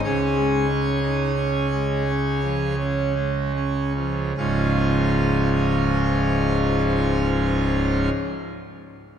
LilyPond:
<<
  \new Staff \with { instrumentName = "Pipe organ" } { \time 3/4 \key des \major \tempo 4 = 37 <des' aes' des''>2 r4 | <des, aes, f aes des' f'>2. | }
  \new Staff \with { instrumentName = "Pipe organ" } { \clef bass \time 3/4 \key des \major << { des16 aes16 des'16 ees'16 des'16 aes16 des'16 f16 des'16 aes16 des'16 f16 | r2. | } \\ { des,2. | des,,2. | } >> }
>>